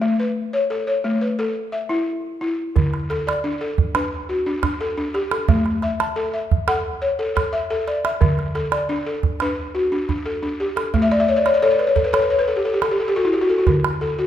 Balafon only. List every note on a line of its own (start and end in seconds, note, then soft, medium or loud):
0.02 0.36 A3 medium
0.20 0.71 B4 medium
0.53 0.86 C#5 medium
0.70 1.22 A4 medium
0.87 1.39 C#5 medium
1.04 1.39 A3 medium
1.21 1.73 B4 medium
1.39 1.73 A4 medium
1.72 2.24 E5 medium
1.89 2.24 E4 medium
2.41 2.76 E4 medium
2.76 3.10 D3 medium
3.10 3.60 A4 medium
3.27 3.78 D5 medium
3.44 3.78 D4 medium
3.61 4.12 A4 medium
3.95 4.29 D4 medium
3.95 4.46 B4 medium
4.29 4.81 F#4 medium
4.46 4.62 D4 medium
4.63 4.96 D4 medium
4.81 5.30 A4 medium
4.98 5.32 D4 medium
5.14 5.66 G4 medium
5.31 5.66 A4 medium
5.49 5.83 A3 medium
5.83 6.32 E5 medium
6.00 6.51 A5 medium
6.16 6.51 A4 medium
6.33 6.85 E5 medium
6.68 7.02 A4 medium
6.68 7.19 F#5 medium
7.02 7.53 C#5 medium
7.19 7.34 A4 medium
7.36 7.69 A4 medium
7.53 8.03 E5 medium
7.70 8.04 A4 medium
7.87 8.39 D5 medium
8.05 8.39 E5 medium
8.21 8.55 D3 medium
8.55 9.05 A4 medium
8.72 9.23 D5 medium
8.89 9.23 D4 medium
9.06 9.58 A4 medium
9.42 9.75 D4 medium
9.42 9.92 B4 medium
9.75 10.26 F#4 medium
9.92 10.08 D4 medium
10.09 10.41 D4 medium
10.26 10.75 A4 medium
10.43 10.77 D4 medium
10.60 11.11 G4 medium
10.76 11.11 A4 medium
10.94 11.28 A3 medium
11.02 11.18 E5 medium
11.11 11.27 D5 medium
11.20 11.36 E5 medium
11.28 11.44 C#5 medium
11.36 11.53 D5 medium
11.46 11.61 C#5 medium
11.54 11.70 D5 medium
11.62 11.94 A4 medium
11.62 11.78 C#5 medium
11.71 11.87 D5 medium
11.79 11.95 B4 medium
11.87 12.03 C#5 medium
11.96 12.12 A4 medium
12.04 12.21 B4 medium
12.13 12.47 A4 medium
12.13 12.29 C#5 medium
12.22 12.38 B4 medium
12.30 12.46 C#5 medium
12.39 12.55 B4 medium
12.48 12.64 A4 medium
12.56 12.72 G4 medium
12.65 12.81 A4 medium
12.74 12.89 G4 medium
12.83 12.98 A4 medium
12.91 13.07 G4 medium
13.00 13.15 A4 medium
13.08 13.24 G4 medium
13.16 13.32 F#4 medium
13.16 13.48 A4 medium
13.25 13.41 E4 medium
13.33 13.49 G4 medium
13.41 13.57 F#4 medium
13.50 13.66 A4 medium
13.58 13.74 F#4 medium
13.67 14.01 D3 medium
14.01 14.27 A4 medium
14.19 14.27 F#4 medium